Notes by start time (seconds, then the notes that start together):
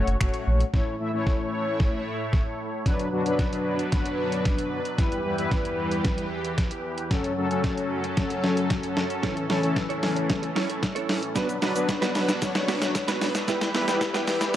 Already playing: A3 F#4 C#5
0.07 F#1, closed hi-hat
0.20 F#1 A3 F#4 C#5, finger snap, kick, closed hi-hat
0.34 closed hi-hat
0.47 A#1
0.60 closed hi-hat
0.73 A2 A3 E4 C#5, kick, snare
1.00 A3 E4 E5
1.13 A3 E4 C#5
1.27 kick, snare
1.80 kick, snare
2.33 kick, snare
2.86 B2 F#3 D4 B4, kick, snare, closed hi-hat
2.99 closed hi-hat
3.12 F#3 D4 F#4
3.26 F#3 D4 B4, closed hi-hat
3.39 kick, snare, closed hi-hat
3.53 closed hi-hat
3.79 closed hi-hat
3.92 F#3 D4 B4, kick, snare, closed hi-hat
4.06 closed hi-hat
4.32 closed hi-hat
4.45 kick, snare, closed hi-hat
4.58 closed hi-hat
4.85 closed hi-hat
4.98 E2 E3 G3 E4 G4 B4, kick, snare, closed hi-hat
5.12 closed hi-hat
5.25 G3 E4 B4
5.38 G3 E4 B4, closed hi-hat
5.51 kick, snare, closed hi-hat
5.65 closed hi-hat
5.91 closed hi-hat
6.05 kick, snare, closed hi-hat
6.18 closed hi-hat
6.45 closed hi-hat
6.58 kick, snare, closed hi-hat
6.71 closed hi-hat
6.98 closed hi-hat
7.11 F#2 F#3 C#4 A4, kick, snare, closed hi-hat
7.24 closed hi-hat
7.37 F#3 C#4 A4
7.51 F#3 C#4 A4, closed hi-hat
7.64 kick, snare, closed hi-hat
7.78 closed hi-hat
8.04 closed hi-hat
8.17 F#3 C#4 A4, kick, snare, closed hi-hat
8.30 closed hi-hat
8.44 snare
8.57 closed hi-hat
8.70 kick, snare, closed hi-hat
8.83 closed hi-hat
8.97 snare
9.10 closed hi-hat
9.23 A2 E3 C#4 E4 A4 C#5, kick, snare, closed hi-hat
9.36 muted clean electric guitar stroke, closed hi-hat
9.49 E3 C#4 E4 A4 C#5, snare, open hi-hat
9.63 E3 C#4 E4 A4 C#5, closed hi-hat
9.76 muted clean electric guitar stroke, kick, snare, closed hi-hat
9.89 C#4 E4 A4 C#5, closed hi-hat
10.03 muted clean electric guitar stroke, snare, open hi-hat
10.16 muted clean electric guitar stroke, closed hi-hat
10.29 muted clean electric guitar stroke, kick, snare, closed hi-hat
10.42 muted clean electric guitar stroke, closed hi-hat
10.55 C#4 E4 A4 C#5, snare, open hi-hat
10.69 C#4 E4 A4 C#5, closed hi-hat
10.82 muted clean electric guitar stroke, kick, snare, closed hi-hat
10.95 C#4 E4 A4 C#5, closed hi-hat
11.09 C#4 E4 A4 C#5, snare, open hi-hat
11.22 muted clean electric guitar stroke, closed hi-hat
11.35 B2 F#3 B3 D4 F#4 B4, kick, snare, closed hi-hat, shaker
11.49 muted clean electric guitar stroke, closed hi-hat, shaker
11.62 F#3 B3 D4 F#4 B4, snare, open hi-hat, shaker
11.75 F#3 B3 D4 F#4 B4, closed hi-hat, shaker
11.88 muted clean electric guitar stroke, kick, snare, closed hi-hat, shaker
12.01 B3 D4 F#4 B4, snare, closed hi-hat, shaker
12.15 snare, open hi-hat, shaker
12.28 muted clean electric guitar stroke, snare, closed hi-hat, shaker
12.41 F#3 D4 C#5, muted clean electric guitar stroke, kick, snare, closed hi-hat, shaker
12.55 muted clean electric guitar stroke, snare, closed hi-hat, shaker
12.68 B3 D4 F#4 B4, snare, open hi-hat, shaker
12.81 B3 D4 F#4 B4, snare, closed hi-hat, shaker
12.94 muted clean electric guitar stroke, kick, snare, closed hi-hat, shaker
13.08 B3 D4 F#4 B4, snare, closed hi-hat, shaker
13.21 B3 D4 F#4 B4, snare, open hi-hat, shaker
13.34 muted clean electric guitar stroke, snare, closed hi-hat, shaker
13.47 E2 E3 G3 B3 E4 G4 B4, kick, snare, closed hi-hat, shaker
13.61 muted clean electric guitar stroke, snare, closed hi-hat, shaker
13.74 G3 B3 E4 G4 B4, snare, open hi-hat, shaker
13.87 G3 B3 E4 G4 B4, snare, closed hi-hat, shaker
14.01 kick, snare, closed hi-hat, shaker
14.14 B3 E4 G4 B4, snare, closed hi-hat, shaker
14.27 muted clean electric guitar stroke, snare, open hi-hat, shaker
14.41 muted clean electric guitar stroke, snare, closed hi-hat, shaker